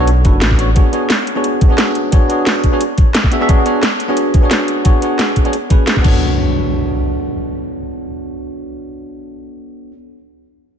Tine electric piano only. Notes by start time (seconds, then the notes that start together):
0.00 C#5
0.24 B3 D4 F#4 A4 B4
0.58 B3 D4 F#4 A4 C#5
0.75 B3 D4 F#4 G#4 C#5
0.92 B3 D4 F#4 G#4 C#5
1.35 B3 D4 F#4 G#4 C#5
1.68 B3 D4 F#4 G#4 C#5
2.12 B3 D4 F#4 G#4 C#5
2.28 B3 D4 F#4 G#4 C#5
2.72 B3 D4 F#4 G#4 C#5
3.31 B3 D4 F#4 G#4 E5
3.40 B3 D4 F#4 G#4 E5
3.48 B3 D4 F#4 G#4 C#5
3.65 B3 D4 F#4 G#4 C#5
4.08 B3 D4 F#4 G#4 C#5
4.41 B3 D4 F#4 G#4 C#5
4.84 B3 D4 F#4 G#4 C#5
5.01 B3 D4 F#4 G#4 C#5
5.44 B3 D4 F#4 G#4 C#5
5.70 B3 D4 F#4 G#4 B4
6.01 B3 D4 F#4
6.06 A4 C#5